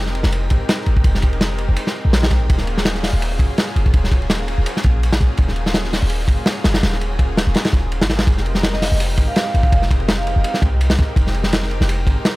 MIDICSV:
0, 0, Header, 1, 5, 480
1, 0, Start_track
1, 0, Tempo, 361446
1, 1390, Time_signature, 4, 2, 24, 8
1, 16415, End_track
2, 0, Start_track
2, 0, Title_t, "Vibraphone"
2, 0, Program_c, 0, 11
2, 11603, Note_on_c, 0, 75, 91
2, 11886, Note_off_c, 0, 75, 0
2, 12320, Note_on_c, 0, 77, 90
2, 12648, Note_off_c, 0, 77, 0
2, 12673, Note_on_c, 0, 77, 84
2, 12755, Note_off_c, 0, 77, 0
2, 12798, Note_on_c, 0, 77, 79
2, 12870, Note_off_c, 0, 77, 0
2, 13521, Note_on_c, 0, 77, 91
2, 14001, Note_off_c, 0, 77, 0
2, 16415, End_track
3, 0, Start_track
3, 0, Title_t, "Analog synth pad"
3, 0, Program_c, 1, 89
3, 0, Note_on_c, 1, 56, 95
3, 0, Note_on_c, 1, 60, 88
3, 0, Note_on_c, 1, 63, 87
3, 0, Note_on_c, 1, 67, 89
3, 0, Note_on_c, 1, 70, 108
3, 643, Note_off_c, 1, 56, 0
3, 643, Note_off_c, 1, 67, 0
3, 644, Note_off_c, 1, 60, 0
3, 644, Note_off_c, 1, 63, 0
3, 644, Note_off_c, 1, 70, 0
3, 673, Note_on_c, 1, 56, 83
3, 673, Note_on_c, 1, 60, 77
3, 673, Note_on_c, 1, 63, 76
3, 674, Note_on_c, 1, 67, 77
3, 674, Note_on_c, 1, 70, 93
3, 1365, Note_off_c, 1, 56, 0
3, 1365, Note_off_c, 1, 60, 0
3, 1365, Note_off_c, 1, 63, 0
3, 1366, Note_off_c, 1, 67, 0
3, 1366, Note_off_c, 1, 70, 0
3, 1394, Note_on_c, 1, 63, 86
3, 1395, Note_on_c, 1, 60, 86
3, 1395, Note_on_c, 1, 67, 85
3, 1397, Note_on_c, 1, 56, 93
3, 1397, Note_on_c, 1, 70, 105
3, 2696, Note_off_c, 1, 63, 0
3, 2697, Note_off_c, 1, 56, 0
3, 2697, Note_off_c, 1, 60, 0
3, 2697, Note_off_c, 1, 67, 0
3, 2697, Note_off_c, 1, 70, 0
3, 2717, Note_on_c, 1, 56, 100
3, 2718, Note_on_c, 1, 63, 90
3, 2718, Note_on_c, 1, 70, 114
3, 2719, Note_on_c, 1, 67, 94
3, 2720, Note_on_c, 1, 60, 97
3, 3283, Note_off_c, 1, 56, 0
3, 3283, Note_off_c, 1, 63, 0
3, 3283, Note_off_c, 1, 67, 0
3, 3283, Note_off_c, 1, 70, 0
3, 3284, Note_off_c, 1, 60, 0
3, 3311, Note_on_c, 1, 61, 88
3, 3312, Note_on_c, 1, 54, 101
3, 3312, Note_on_c, 1, 65, 90
3, 3313, Note_on_c, 1, 58, 86
3, 3313, Note_on_c, 1, 68, 110
3, 4484, Note_off_c, 1, 61, 0
3, 4485, Note_off_c, 1, 54, 0
3, 4485, Note_off_c, 1, 58, 0
3, 4485, Note_off_c, 1, 65, 0
3, 4485, Note_off_c, 1, 68, 0
3, 4513, Note_on_c, 1, 58, 77
3, 4513, Note_on_c, 1, 65, 77
3, 4514, Note_on_c, 1, 54, 83
3, 4514, Note_on_c, 1, 61, 78
3, 4514, Note_on_c, 1, 68, 94
3, 5205, Note_off_c, 1, 65, 0
3, 5206, Note_off_c, 1, 54, 0
3, 5206, Note_off_c, 1, 58, 0
3, 5206, Note_off_c, 1, 61, 0
3, 5206, Note_off_c, 1, 68, 0
3, 5230, Note_on_c, 1, 65, 92
3, 5232, Note_on_c, 1, 54, 96
3, 5232, Note_on_c, 1, 61, 85
3, 5233, Note_on_c, 1, 68, 107
3, 5234, Note_on_c, 1, 58, 93
3, 6884, Note_off_c, 1, 65, 0
3, 6885, Note_off_c, 1, 54, 0
3, 6885, Note_off_c, 1, 61, 0
3, 6885, Note_off_c, 1, 68, 0
3, 6886, Note_off_c, 1, 58, 0
3, 6917, Note_on_c, 1, 68, 93
3, 6918, Note_on_c, 1, 65, 72
3, 6919, Note_on_c, 1, 61, 71
3, 6920, Note_on_c, 1, 54, 77
3, 6921, Note_on_c, 1, 58, 73
3, 7127, Note_off_c, 1, 68, 0
3, 7128, Note_off_c, 1, 61, 0
3, 7128, Note_off_c, 1, 65, 0
3, 7129, Note_off_c, 1, 54, 0
3, 7129, Note_off_c, 1, 58, 0
3, 7156, Note_on_c, 1, 68, 110
3, 7157, Note_on_c, 1, 65, 88
3, 7158, Note_on_c, 1, 54, 101
3, 7158, Note_on_c, 1, 61, 93
3, 7159, Note_on_c, 1, 58, 90
3, 8327, Note_off_c, 1, 65, 0
3, 8327, Note_off_c, 1, 68, 0
3, 8328, Note_off_c, 1, 54, 0
3, 8328, Note_off_c, 1, 58, 0
3, 8328, Note_off_c, 1, 61, 0
3, 8354, Note_on_c, 1, 54, 86
3, 8354, Note_on_c, 1, 65, 75
3, 8354, Note_on_c, 1, 68, 94
3, 8356, Note_on_c, 1, 58, 76
3, 8356, Note_on_c, 1, 61, 73
3, 9046, Note_off_c, 1, 54, 0
3, 9046, Note_off_c, 1, 65, 0
3, 9046, Note_off_c, 1, 68, 0
3, 9047, Note_off_c, 1, 58, 0
3, 9047, Note_off_c, 1, 61, 0
3, 9067, Note_on_c, 1, 58, 93
3, 9068, Note_on_c, 1, 61, 90
3, 9068, Note_on_c, 1, 68, 106
3, 9069, Note_on_c, 1, 54, 95
3, 9071, Note_on_c, 1, 65, 86
3, 10723, Note_off_c, 1, 58, 0
3, 10723, Note_off_c, 1, 61, 0
3, 10723, Note_off_c, 1, 68, 0
3, 10724, Note_off_c, 1, 54, 0
3, 10724, Note_off_c, 1, 65, 0
3, 10751, Note_on_c, 1, 58, 73
3, 10751, Note_on_c, 1, 65, 74
3, 10752, Note_on_c, 1, 61, 73
3, 10752, Note_on_c, 1, 68, 86
3, 10754, Note_on_c, 1, 54, 75
3, 10964, Note_off_c, 1, 58, 0
3, 10964, Note_off_c, 1, 65, 0
3, 10965, Note_off_c, 1, 61, 0
3, 10965, Note_off_c, 1, 68, 0
3, 10966, Note_off_c, 1, 54, 0
3, 10988, Note_on_c, 1, 56, 97
3, 10989, Note_on_c, 1, 63, 94
3, 10990, Note_on_c, 1, 60, 89
3, 10990, Note_on_c, 1, 67, 94
3, 10990, Note_on_c, 1, 70, 112
3, 12163, Note_off_c, 1, 56, 0
3, 12163, Note_off_c, 1, 63, 0
3, 12164, Note_off_c, 1, 60, 0
3, 12164, Note_off_c, 1, 67, 0
3, 12164, Note_off_c, 1, 70, 0
3, 12190, Note_on_c, 1, 60, 78
3, 12190, Note_on_c, 1, 70, 91
3, 12191, Note_on_c, 1, 63, 77
3, 12191, Note_on_c, 1, 67, 76
3, 12192, Note_on_c, 1, 56, 84
3, 12884, Note_off_c, 1, 60, 0
3, 12884, Note_off_c, 1, 63, 0
3, 12884, Note_off_c, 1, 67, 0
3, 12884, Note_off_c, 1, 70, 0
3, 12885, Note_off_c, 1, 56, 0
3, 12910, Note_on_c, 1, 56, 98
3, 12911, Note_on_c, 1, 70, 101
3, 12912, Note_on_c, 1, 63, 90
3, 12912, Note_on_c, 1, 67, 93
3, 12913, Note_on_c, 1, 60, 91
3, 14564, Note_off_c, 1, 56, 0
3, 14565, Note_off_c, 1, 60, 0
3, 14565, Note_off_c, 1, 63, 0
3, 14565, Note_off_c, 1, 67, 0
3, 14565, Note_off_c, 1, 70, 0
3, 14588, Note_on_c, 1, 67, 72
3, 14590, Note_on_c, 1, 56, 85
3, 14590, Note_on_c, 1, 60, 70
3, 14591, Note_on_c, 1, 63, 73
3, 14591, Note_on_c, 1, 70, 93
3, 14803, Note_off_c, 1, 67, 0
3, 14804, Note_off_c, 1, 56, 0
3, 14804, Note_off_c, 1, 60, 0
3, 14804, Note_off_c, 1, 63, 0
3, 14804, Note_off_c, 1, 70, 0
3, 14832, Note_on_c, 1, 56, 98
3, 14832, Note_on_c, 1, 70, 105
3, 14833, Note_on_c, 1, 60, 88
3, 14833, Note_on_c, 1, 67, 90
3, 14834, Note_on_c, 1, 63, 90
3, 16005, Note_off_c, 1, 56, 0
3, 16005, Note_off_c, 1, 67, 0
3, 16005, Note_off_c, 1, 70, 0
3, 16006, Note_off_c, 1, 60, 0
3, 16006, Note_off_c, 1, 63, 0
3, 16029, Note_on_c, 1, 60, 75
3, 16029, Note_on_c, 1, 70, 90
3, 16030, Note_on_c, 1, 63, 77
3, 16032, Note_on_c, 1, 67, 75
3, 16033, Note_on_c, 1, 56, 82
3, 16415, Note_off_c, 1, 56, 0
3, 16415, Note_off_c, 1, 60, 0
3, 16415, Note_off_c, 1, 63, 0
3, 16415, Note_off_c, 1, 67, 0
3, 16415, Note_off_c, 1, 70, 0
3, 16415, End_track
4, 0, Start_track
4, 0, Title_t, "808-style bass"
4, 0, Program_c, 2, 38
4, 0, Note_on_c, 2, 29, 97
4, 299, Note_off_c, 2, 29, 0
4, 319, Note_on_c, 2, 29, 102
4, 677, Note_on_c, 2, 32, 106
4, 697, Note_off_c, 2, 29, 0
4, 791, Note_off_c, 2, 32, 0
4, 1150, Note_on_c, 2, 32, 86
4, 1368, Note_off_c, 2, 32, 0
4, 1384, Note_on_c, 2, 29, 97
4, 2216, Note_off_c, 2, 29, 0
4, 2240, Note_on_c, 2, 29, 101
4, 2339, Note_off_c, 2, 29, 0
4, 2721, Note_on_c, 2, 34, 102
4, 3293, Note_off_c, 2, 34, 0
4, 3317, Note_on_c, 2, 27, 99
4, 4143, Note_off_c, 2, 27, 0
4, 4158, Note_on_c, 2, 27, 103
4, 4507, Note_on_c, 2, 30, 103
4, 4527, Note_off_c, 2, 27, 0
4, 4626, Note_off_c, 2, 30, 0
4, 4990, Note_on_c, 2, 30, 85
4, 5208, Note_off_c, 2, 30, 0
4, 5227, Note_on_c, 2, 27, 97
4, 6058, Note_off_c, 2, 27, 0
4, 6082, Note_on_c, 2, 27, 100
4, 6180, Note_off_c, 2, 27, 0
4, 6434, Note_on_c, 2, 34, 97
4, 6895, Note_off_c, 2, 34, 0
4, 6914, Note_on_c, 2, 34, 106
4, 7029, Note_off_c, 2, 34, 0
4, 7153, Note_on_c, 2, 27, 98
4, 7981, Note_off_c, 2, 27, 0
4, 8000, Note_on_c, 2, 27, 106
4, 8337, Note_on_c, 2, 30, 97
4, 8357, Note_off_c, 2, 27, 0
4, 8461, Note_off_c, 2, 30, 0
4, 8828, Note_on_c, 2, 30, 88
4, 9047, Note_off_c, 2, 30, 0
4, 9068, Note_on_c, 2, 27, 98
4, 9899, Note_off_c, 2, 27, 0
4, 9920, Note_on_c, 2, 27, 103
4, 10019, Note_off_c, 2, 27, 0
4, 10265, Note_on_c, 2, 27, 97
4, 10641, Note_on_c, 2, 32, 87
4, 10661, Note_off_c, 2, 27, 0
4, 10973, Note_off_c, 2, 32, 0
4, 10985, Note_on_c, 2, 29, 97
4, 11817, Note_off_c, 2, 29, 0
4, 11842, Note_on_c, 2, 29, 99
4, 12188, Note_on_c, 2, 32, 104
4, 12208, Note_off_c, 2, 29, 0
4, 12306, Note_off_c, 2, 32, 0
4, 12673, Note_on_c, 2, 32, 88
4, 12890, Note_off_c, 2, 32, 0
4, 12914, Note_on_c, 2, 29, 97
4, 13741, Note_off_c, 2, 29, 0
4, 13760, Note_on_c, 2, 29, 108
4, 13859, Note_off_c, 2, 29, 0
4, 14103, Note_on_c, 2, 36, 99
4, 14569, Note_off_c, 2, 36, 0
4, 14593, Note_on_c, 2, 36, 104
4, 14709, Note_off_c, 2, 36, 0
4, 14824, Note_on_c, 2, 29, 96
4, 15656, Note_off_c, 2, 29, 0
4, 15679, Note_on_c, 2, 29, 98
4, 16025, Note_on_c, 2, 32, 104
4, 16045, Note_off_c, 2, 29, 0
4, 16145, Note_off_c, 2, 32, 0
4, 16415, End_track
5, 0, Start_track
5, 0, Title_t, "Drums"
5, 83, Note_on_c, 9, 38, 38
5, 196, Note_on_c, 9, 51, 64
5, 215, Note_off_c, 9, 38, 0
5, 309, Note_on_c, 9, 38, 53
5, 329, Note_off_c, 9, 51, 0
5, 429, Note_on_c, 9, 51, 100
5, 442, Note_off_c, 9, 38, 0
5, 562, Note_off_c, 9, 51, 0
5, 663, Note_on_c, 9, 51, 72
5, 677, Note_on_c, 9, 36, 88
5, 796, Note_off_c, 9, 51, 0
5, 810, Note_off_c, 9, 36, 0
5, 912, Note_on_c, 9, 51, 89
5, 918, Note_on_c, 9, 38, 122
5, 1045, Note_off_c, 9, 51, 0
5, 1050, Note_off_c, 9, 38, 0
5, 1144, Note_on_c, 9, 51, 68
5, 1277, Note_off_c, 9, 51, 0
5, 1282, Note_on_c, 9, 36, 100
5, 1383, Note_on_c, 9, 51, 96
5, 1385, Note_off_c, 9, 36, 0
5, 1385, Note_on_c, 9, 36, 125
5, 1516, Note_off_c, 9, 51, 0
5, 1518, Note_off_c, 9, 36, 0
5, 1523, Note_on_c, 9, 38, 43
5, 1622, Note_on_c, 9, 51, 73
5, 1638, Note_on_c, 9, 36, 96
5, 1655, Note_off_c, 9, 38, 0
5, 1755, Note_off_c, 9, 51, 0
5, 1762, Note_on_c, 9, 51, 49
5, 1770, Note_off_c, 9, 36, 0
5, 1870, Note_off_c, 9, 51, 0
5, 1870, Note_on_c, 9, 38, 108
5, 1870, Note_on_c, 9, 51, 77
5, 2003, Note_off_c, 9, 38, 0
5, 2003, Note_off_c, 9, 51, 0
5, 2102, Note_on_c, 9, 51, 74
5, 2235, Note_off_c, 9, 51, 0
5, 2342, Note_on_c, 9, 51, 98
5, 2475, Note_off_c, 9, 51, 0
5, 2483, Note_on_c, 9, 38, 47
5, 2615, Note_off_c, 9, 38, 0
5, 2830, Note_on_c, 9, 38, 103
5, 2839, Note_on_c, 9, 51, 71
5, 2963, Note_off_c, 9, 38, 0
5, 2965, Note_on_c, 9, 38, 116
5, 2971, Note_off_c, 9, 51, 0
5, 3065, Note_on_c, 9, 51, 70
5, 3066, Note_on_c, 9, 36, 101
5, 3098, Note_off_c, 9, 38, 0
5, 3198, Note_off_c, 9, 36, 0
5, 3198, Note_off_c, 9, 51, 0
5, 3314, Note_on_c, 9, 51, 94
5, 3317, Note_on_c, 9, 36, 108
5, 3425, Note_on_c, 9, 38, 40
5, 3446, Note_off_c, 9, 51, 0
5, 3449, Note_off_c, 9, 36, 0
5, 3547, Note_on_c, 9, 51, 71
5, 3557, Note_off_c, 9, 38, 0
5, 3680, Note_off_c, 9, 51, 0
5, 3685, Note_on_c, 9, 38, 51
5, 3789, Note_off_c, 9, 38, 0
5, 3789, Note_on_c, 9, 38, 102
5, 3791, Note_on_c, 9, 51, 84
5, 3914, Note_off_c, 9, 38, 0
5, 3914, Note_on_c, 9, 38, 38
5, 3924, Note_off_c, 9, 51, 0
5, 4027, Note_off_c, 9, 38, 0
5, 4027, Note_on_c, 9, 38, 55
5, 4034, Note_on_c, 9, 46, 87
5, 4160, Note_off_c, 9, 38, 0
5, 4166, Note_off_c, 9, 46, 0
5, 4275, Note_on_c, 9, 51, 90
5, 4408, Note_off_c, 9, 51, 0
5, 4506, Note_on_c, 9, 36, 87
5, 4511, Note_on_c, 9, 51, 62
5, 4639, Note_off_c, 9, 36, 0
5, 4644, Note_off_c, 9, 51, 0
5, 4750, Note_on_c, 9, 51, 84
5, 4756, Note_on_c, 9, 38, 105
5, 4883, Note_off_c, 9, 51, 0
5, 4889, Note_off_c, 9, 38, 0
5, 4995, Note_on_c, 9, 51, 70
5, 5125, Note_on_c, 9, 36, 103
5, 5127, Note_off_c, 9, 51, 0
5, 5226, Note_on_c, 9, 51, 95
5, 5228, Note_off_c, 9, 36, 0
5, 5228, Note_on_c, 9, 36, 118
5, 5359, Note_off_c, 9, 51, 0
5, 5361, Note_off_c, 9, 36, 0
5, 5364, Note_on_c, 9, 38, 43
5, 5465, Note_on_c, 9, 36, 97
5, 5467, Note_on_c, 9, 51, 64
5, 5497, Note_off_c, 9, 38, 0
5, 5598, Note_off_c, 9, 36, 0
5, 5599, Note_off_c, 9, 51, 0
5, 5601, Note_on_c, 9, 51, 46
5, 5706, Note_off_c, 9, 51, 0
5, 5706, Note_on_c, 9, 51, 83
5, 5707, Note_on_c, 9, 38, 105
5, 5839, Note_off_c, 9, 51, 0
5, 5840, Note_off_c, 9, 38, 0
5, 5948, Note_on_c, 9, 51, 71
5, 6081, Note_off_c, 9, 51, 0
5, 6188, Note_on_c, 9, 51, 96
5, 6320, Note_off_c, 9, 51, 0
5, 6331, Note_on_c, 9, 38, 44
5, 6424, Note_on_c, 9, 51, 62
5, 6434, Note_on_c, 9, 36, 88
5, 6464, Note_off_c, 9, 38, 0
5, 6557, Note_off_c, 9, 51, 0
5, 6567, Note_off_c, 9, 36, 0
5, 6681, Note_on_c, 9, 51, 84
5, 6807, Note_on_c, 9, 38, 120
5, 6814, Note_off_c, 9, 51, 0
5, 6915, Note_on_c, 9, 36, 95
5, 6917, Note_on_c, 9, 51, 64
5, 6939, Note_off_c, 9, 38, 0
5, 7048, Note_off_c, 9, 36, 0
5, 7050, Note_off_c, 9, 51, 0
5, 7135, Note_on_c, 9, 51, 84
5, 7152, Note_on_c, 9, 36, 117
5, 7268, Note_off_c, 9, 51, 0
5, 7280, Note_on_c, 9, 38, 38
5, 7285, Note_off_c, 9, 36, 0
5, 7382, Note_on_c, 9, 51, 70
5, 7412, Note_off_c, 9, 38, 0
5, 7514, Note_off_c, 9, 51, 0
5, 7520, Note_on_c, 9, 38, 56
5, 7626, Note_off_c, 9, 38, 0
5, 7626, Note_on_c, 9, 38, 108
5, 7630, Note_on_c, 9, 51, 87
5, 7758, Note_off_c, 9, 38, 0
5, 7760, Note_on_c, 9, 38, 46
5, 7763, Note_off_c, 9, 51, 0
5, 7874, Note_on_c, 9, 46, 89
5, 7876, Note_off_c, 9, 38, 0
5, 7876, Note_on_c, 9, 38, 59
5, 8007, Note_off_c, 9, 46, 0
5, 8008, Note_off_c, 9, 38, 0
5, 8096, Note_on_c, 9, 51, 86
5, 8229, Note_off_c, 9, 51, 0
5, 8337, Note_on_c, 9, 36, 93
5, 8344, Note_on_c, 9, 51, 63
5, 8470, Note_off_c, 9, 36, 0
5, 8476, Note_off_c, 9, 51, 0
5, 8577, Note_on_c, 9, 38, 115
5, 8593, Note_on_c, 9, 51, 89
5, 8710, Note_off_c, 9, 38, 0
5, 8725, Note_off_c, 9, 51, 0
5, 8822, Note_on_c, 9, 38, 112
5, 8833, Note_on_c, 9, 51, 87
5, 8952, Note_off_c, 9, 38, 0
5, 8952, Note_on_c, 9, 38, 112
5, 8957, Note_off_c, 9, 51, 0
5, 8957, Note_on_c, 9, 51, 81
5, 9070, Note_off_c, 9, 38, 0
5, 9070, Note_on_c, 9, 38, 104
5, 9071, Note_off_c, 9, 51, 0
5, 9071, Note_on_c, 9, 51, 77
5, 9203, Note_off_c, 9, 38, 0
5, 9203, Note_on_c, 9, 38, 41
5, 9204, Note_off_c, 9, 51, 0
5, 9312, Note_on_c, 9, 51, 79
5, 9336, Note_off_c, 9, 38, 0
5, 9445, Note_off_c, 9, 51, 0
5, 9549, Note_on_c, 9, 36, 86
5, 9549, Note_on_c, 9, 51, 59
5, 9682, Note_off_c, 9, 36, 0
5, 9682, Note_off_c, 9, 51, 0
5, 9793, Note_on_c, 9, 38, 108
5, 9802, Note_on_c, 9, 51, 84
5, 9926, Note_off_c, 9, 38, 0
5, 9935, Note_off_c, 9, 51, 0
5, 10019, Note_on_c, 9, 51, 89
5, 10035, Note_on_c, 9, 38, 115
5, 10152, Note_off_c, 9, 51, 0
5, 10154, Note_on_c, 9, 51, 82
5, 10162, Note_off_c, 9, 38, 0
5, 10162, Note_on_c, 9, 38, 115
5, 10265, Note_on_c, 9, 36, 99
5, 10277, Note_off_c, 9, 51, 0
5, 10277, Note_on_c, 9, 51, 69
5, 10295, Note_off_c, 9, 38, 0
5, 10398, Note_off_c, 9, 36, 0
5, 10410, Note_off_c, 9, 51, 0
5, 10513, Note_on_c, 9, 51, 85
5, 10644, Note_on_c, 9, 38, 126
5, 10646, Note_off_c, 9, 51, 0
5, 10751, Note_on_c, 9, 51, 82
5, 10752, Note_off_c, 9, 38, 0
5, 10752, Note_on_c, 9, 38, 103
5, 10871, Note_off_c, 9, 51, 0
5, 10871, Note_on_c, 9, 51, 79
5, 10872, Note_off_c, 9, 38, 0
5, 10872, Note_on_c, 9, 38, 112
5, 10985, Note_on_c, 9, 36, 125
5, 10988, Note_off_c, 9, 51, 0
5, 10988, Note_on_c, 9, 51, 84
5, 11005, Note_off_c, 9, 38, 0
5, 11118, Note_off_c, 9, 36, 0
5, 11121, Note_off_c, 9, 51, 0
5, 11121, Note_on_c, 9, 38, 38
5, 11232, Note_on_c, 9, 51, 65
5, 11254, Note_off_c, 9, 38, 0
5, 11352, Note_on_c, 9, 38, 54
5, 11365, Note_off_c, 9, 51, 0
5, 11466, Note_off_c, 9, 38, 0
5, 11466, Note_on_c, 9, 38, 113
5, 11476, Note_on_c, 9, 51, 89
5, 11597, Note_off_c, 9, 38, 0
5, 11597, Note_on_c, 9, 38, 42
5, 11609, Note_off_c, 9, 51, 0
5, 11712, Note_off_c, 9, 38, 0
5, 11712, Note_on_c, 9, 38, 59
5, 11715, Note_on_c, 9, 46, 93
5, 11844, Note_off_c, 9, 38, 0
5, 11848, Note_off_c, 9, 46, 0
5, 11952, Note_on_c, 9, 51, 97
5, 12085, Note_off_c, 9, 51, 0
5, 12183, Note_on_c, 9, 51, 64
5, 12188, Note_on_c, 9, 36, 86
5, 12316, Note_off_c, 9, 51, 0
5, 12321, Note_off_c, 9, 36, 0
5, 12427, Note_on_c, 9, 51, 93
5, 12437, Note_on_c, 9, 38, 109
5, 12559, Note_off_c, 9, 51, 0
5, 12569, Note_off_c, 9, 38, 0
5, 12677, Note_on_c, 9, 51, 66
5, 12793, Note_on_c, 9, 36, 103
5, 12809, Note_off_c, 9, 51, 0
5, 12913, Note_off_c, 9, 36, 0
5, 12913, Note_on_c, 9, 36, 116
5, 12914, Note_on_c, 9, 51, 84
5, 13042, Note_on_c, 9, 38, 39
5, 13046, Note_off_c, 9, 36, 0
5, 13047, Note_off_c, 9, 51, 0
5, 13155, Note_on_c, 9, 36, 94
5, 13159, Note_on_c, 9, 51, 68
5, 13175, Note_off_c, 9, 38, 0
5, 13277, Note_off_c, 9, 51, 0
5, 13277, Note_on_c, 9, 51, 41
5, 13288, Note_off_c, 9, 36, 0
5, 13392, Note_off_c, 9, 51, 0
5, 13392, Note_on_c, 9, 51, 86
5, 13393, Note_on_c, 9, 38, 119
5, 13524, Note_off_c, 9, 51, 0
5, 13526, Note_off_c, 9, 38, 0
5, 13635, Note_on_c, 9, 51, 75
5, 13768, Note_off_c, 9, 51, 0
5, 13867, Note_on_c, 9, 51, 91
5, 13998, Note_on_c, 9, 38, 44
5, 14000, Note_off_c, 9, 51, 0
5, 14103, Note_on_c, 9, 36, 92
5, 14105, Note_on_c, 9, 51, 60
5, 14131, Note_off_c, 9, 38, 0
5, 14236, Note_off_c, 9, 36, 0
5, 14238, Note_off_c, 9, 51, 0
5, 14352, Note_on_c, 9, 51, 94
5, 14474, Note_on_c, 9, 38, 120
5, 14484, Note_off_c, 9, 51, 0
5, 14587, Note_on_c, 9, 51, 74
5, 14593, Note_on_c, 9, 36, 102
5, 14607, Note_off_c, 9, 38, 0
5, 14720, Note_off_c, 9, 51, 0
5, 14726, Note_off_c, 9, 36, 0
5, 14824, Note_on_c, 9, 36, 122
5, 14832, Note_on_c, 9, 51, 91
5, 14957, Note_off_c, 9, 36, 0
5, 14963, Note_on_c, 9, 38, 41
5, 14965, Note_off_c, 9, 51, 0
5, 15064, Note_on_c, 9, 51, 64
5, 15096, Note_off_c, 9, 38, 0
5, 15186, Note_on_c, 9, 38, 53
5, 15197, Note_off_c, 9, 51, 0
5, 15305, Note_on_c, 9, 51, 95
5, 15315, Note_off_c, 9, 38, 0
5, 15315, Note_on_c, 9, 38, 113
5, 15438, Note_off_c, 9, 51, 0
5, 15440, Note_off_c, 9, 38, 0
5, 15440, Note_on_c, 9, 38, 37
5, 15550, Note_on_c, 9, 51, 58
5, 15573, Note_off_c, 9, 38, 0
5, 15682, Note_on_c, 9, 38, 49
5, 15683, Note_off_c, 9, 51, 0
5, 15789, Note_on_c, 9, 51, 102
5, 15815, Note_off_c, 9, 38, 0
5, 15922, Note_off_c, 9, 51, 0
5, 16025, Note_on_c, 9, 36, 91
5, 16031, Note_on_c, 9, 51, 68
5, 16158, Note_off_c, 9, 36, 0
5, 16164, Note_off_c, 9, 51, 0
5, 16268, Note_on_c, 9, 38, 121
5, 16269, Note_on_c, 9, 51, 80
5, 16401, Note_off_c, 9, 38, 0
5, 16401, Note_off_c, 9, 51, 0
5, 16415, End_track
0, 0, End_of_file